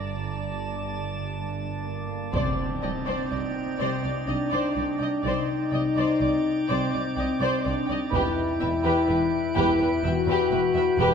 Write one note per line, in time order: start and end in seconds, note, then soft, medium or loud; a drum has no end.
0.00 2.10 G1 soft
0.00 0.13 G2 soft
0.00 2.10 G2 soft
0.00 2.30 D4 soft
0.00 1.29 D5 soft
0.00 2.30 D5 soft
0.00 2.30 A5 soft
0.33 0.63 G3 soft
0.83 1.13 G2 soft
1.34 1.64 G2 soft
1.82 2.14 G2 soft
1.82 2.30 A#3 soft
2.32 2.42 C2 soft
2.32 2.63 C3 soft
2.32 4.27 C4 medium
2.32 5.21 D#4 soft
2.32 2.57 C5 soft
2.32 2.56 D5 soft
2.32 5.21 D5 soft
2.32 2.57 D5 soft
2.32 5.21 G5 soft
2.32 taiko soft
2.32 impact soft
2.82 2.90 C2 soft
2.82 2.91 C2 soft
2.82 3.11 C3 soft
2.82 2.90 D5 soft
2.82 2.90 D#5 soft
2.82 2.91 G5 soft
3.06 3.15 C2 soft
3.06 3.29 C5 soft
3.06 3.29 D5 soft
3.30 3.39 C2 soft
3.30 3.61 C4 soft
3.30 3.38 D5 soft
3.30 3.40 D5 soft
3.30 3.38 D#5 soft
3.77 3.87 C2 soft
3.77 3.88 C2 soft
3.77 4.09 C3 soft
3.77 4.03 C5 soft
3.77 4.01 D5 soft
3.77 4.02 D5 soft
4.02 4.12 C2 soft
4.02 4.11 D5 soft
4.02 4.12 D5 soft
4.02 4.10 D#5 soft
4.26 4.36 C2 soft
4.26 4.58 C4 soft
4.26 5.24 D4 soft
4.26 4.34 D5 soft
4.26 4.37 D#5 soft
4.26 4.34 G5 soft
4.50 4.61 C2 soft
4.50 4.75 C5 soft
4.50 4.73 D5 soft
4.73 4.84 C2 soft
4.73 4.85 C2 soft
4.73 5.05 C4 soft
4.73 4.82 D5 soft
4.73 4.81 D#5 soft
4.77 4.85 D5 soft
4.98 5.09 C2 soft
4.98 5.06 D5 soft
4.98 5.06 G5 soft
5.02 5.10 D#5 soft
5.23 5.32 C2 soft
5.23 5.53 C3 soft
5.23 8.09 D#4 soft
5.23 6.67 D#4 medium
5.23 5.46 D5 soft
5.23 8.09 D5 soft
5.23 8.09 G5 soft
5.27 5.48 C5 soft
5.71 5.80 C2 soft
5.71 6.01 C3 soft
5.71 5.79 D5 soft
5.71 5.81 D#5 soft
5.71 5.80 G5 soft
5.95 6.04 C2 soft
5.95 6.19 C5 soft
5.95 6.18 D5 soft
5.95 6.19 D5 soft
6.18 6.29 C2 soft
6.18 6.50 C4 soft
6.18 6.28 D5 soft
6.18 6.29 D5 soft
6.18 6.26 D#5 soft
6.67 6.77 C2 soft
6.67 6.98 C3 soft
6.67 7.63 C4 medium
6.67 6.91 C5 soft
6.67 6.90 D5 soft
6.67 6.91 D5 soft
6.91 7.02 C2 soft
6.91 7.00 D5 soft
6.91 7.01 D5 soft
6.91 6.99 D#5 soft
7.15 7.25 C2 soft
7.15 7.26 C2 soft
7.15 7.46 C4 soft
7.15 7.24 D5 soft
7.15 7.27 D#5 soft
7.15 7.23 G5 soft
7.40 7.48 C2 soft
7.40 7.64 C5 medium
7.40 7.62 D5 soft
7.40 7.63 D5 soft
7.63 7.73 C2 soft
7.63 7.74 C2 soft
7.63 7.94 C4 soft
7.63 8.00 D4 medium
7.63 7.71 D5 soft
7.63 7.74 D5 soft
7.63 7.71 D#5 soft
7.86 7.97 C2 soft
7.86 7.96 D5 soft
7.86 7.94 G5 soft
7.91 7.99 D#5 soft
8.12 8.21 E1 medium
8.12 8.41 E2 medium
8.12 8.21 E2 soft
8.12 10.97 E4 soft
8.12 10.01 E4 medium
8.12 8.36 G4 soft
8.12 8.35 B4 soft
8.12 10.97 B4 medium
8.12 10.95 G5 soft
8.12 taiko soft
8.59 8.70 E1 soft
8.59 8.89 E2 soft
8.59 8.69 E2 soft
8.59 8.69 B4 soft
8.59 8.68 E5 soft
8.59 8.67 G5 soft
8.84 8.92 E2 medium
8.84 9.07 G4 soft
8.84 9.06 B4 soft
9.07 9.17 E1 soft
9.07 9.16 E2 soft
9.07 9.37 E3 soft
9.07 9.16 B4 soft
9.07 9.18 B4 soft
9.07 9.15 E5 soft
9.56 9.65 E1 medium
9.56 9.85 E2 medium
9.56 9.64 E2 medium
9.56 9.78 G4 medium
9.56 9.79 B4 medium
9.56 taiko soft
9.79 9.87 E2 soft
9.79 9.89 B4 soft
9.79 9.88 E5 soft
10.03 10.12 E1 soft
10.03 10.12 E2 soft
10.03 10.32 E3 soft
10.03 11.00 F#4 medium
10.03 10.11 B4 soft
10.03 10.13 E5 soft
10.03 10.15 G5 soft
10.27 10.35 E2 medium
10.27 10.51 G4 medium
10.27 10.50 B4 soft
10.27 10.51 B4 medium
10.51 10.60 E1 soft
10.51 10.59 E2 soft
10.51 10.80 E3 soft
10.51 10.59 B4 soft
10.51 10.60 B4 soft
10.51 10.60 E5 soft
10.74 10.82 E2 soft
10.74 10.84 B4 soft
10.74 10.84 E5 soft
10.74 10.84 G5 soft
10.98 11.08 E1 medium
10.98 11.06 E2 medium
10.98 11.14 E2 medium
10.98 11.14 E4 medium
10.98 11.14 G4 medium
10.98 11.14 B4 medium
10.98 11.14 G5 medium